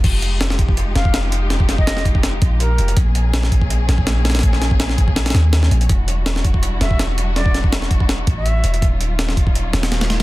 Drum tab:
CC |x-------------------------------|--------------------------------|--------------------------------|--------------------------------|
HH |x---x---x---x---x---x---x---x---|x---x---x---x---x---x---x---x-x-|x---x---x---x---x---x---x---xxxx|x---x---x---x---x-xxx---x---x-x-|
SD |--------o-o---------o---o-------|o---o---o-o-----o---------------|--------o-o---------o---o---oooo|--o-o---o-o-----o-ooo---o-o-----|
BD |o-----------o-o-------o---------|--o---o-----o-o-----o-----------|o-----------o-o-------o---------|o-----o-----o-o-----------------|

CC |--------------------------------|--------------------------------|--------------------------------|
HH |x---x---x---x---x---x---x---x---|x---x---x---x---x---x---x---x-x-|x---x---x---x---x---x-x-x-x-x---|
SD |--------o-o---------o---o-------|o---o---o-o-----o---------------|--------o-o---------o-o-o-o-o---|
BD |o-----------o-o-------o---------|--o---o-----o-o-----o-----------|o-----------o-o-----------------|